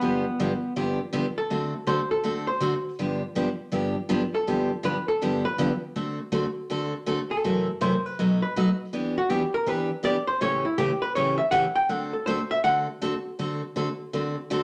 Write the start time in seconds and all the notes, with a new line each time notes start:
Already playing: B3 B4
0.01 G2 D3 F3 B3 D4 G4
0.39 G2 D3 F3 B3 D4 G4
0.76 G2 D3 F3 B3 D4 G4
1.13 G2 D3 F3 B3 D4 G4
1.38 A4
1.50 D3 A3 C4 F#4 A4
1.87 D3 A3 C4 F#4 A4 C5
2.11 A4
2.23 D3 A3 C4 F#4 A4
2.47 C5
2.60 D3 A3 C4 F#4 A4
2.99 G2 D3 F3 B3 D4 G4
3.35 G2 D3 F3 B3 D4 G4
3.72 G2 D3 F3 B3 D4 G4
4.09 G2 D3 F3 B3 D4 G4
4.35 A4
4.47 G2 D3 F3 B3 D4 G4
4.83 G2 D3 F3 B3 D4 G4 B4
5.08 A4
5.22 G2 D3 F3 B3 D4 G4
5.45 B4
5.58 G2 D3 F3 B3 D4 G4
5.96 D3 A3 C4 F#4 A4
6.32 D3 A3 C4 F#4 A4
6.70 D3 A3 C4 F#4 A4
7.06 D3 A3 C4 F#4 A4
7.31 A4
7.44 F#2 C3 E3 A3 E4 F#4
7.81 F#2 C3 E3 A3 E4 F#4 C5
8.06 B4
8.19 B2 F#3 A3 D#4 F#4
8.42 B4
8.56 B2 F#3 A3 D#4 F#4
8.93 E3 B3 D4 G4
9.18 F#4
9.30 E3 B3 D4 G4
9.54 A#4
9.66 E3 B3 D4 G4 B4
10.03 E3 B3 D4 G4 D5
10.27 C5
10.41 A2 C#3 E3 A3 C#4 G4 C#5
10.65 E4
10.78 A2 C#3 E3 A3 C#4 G4
11.02 B4
11.15 A2 C#3 E3 A3 C#4 G4 C#5
11.38 E5
11.51 A2 C#3 E3 A3 C#4 G4 F#5
11.76 G5
11.89 D3 A3 C4 F#4 A4 F#5
12.13 A4
12.26 D3 A3 C4 F#4 A4 C5
12.51 E5
12.64 D3 A3 C4 F#4 A4 F#5
13.02 D3 A3 C4 F#4 A4
13.39 D3 A3 C4 F#4 A4
13.76 D3 A3 C4 F#4 A4
14.13 D3 A3 C4 F#4 A4
14.50 D3 A3 C4 F#4 A4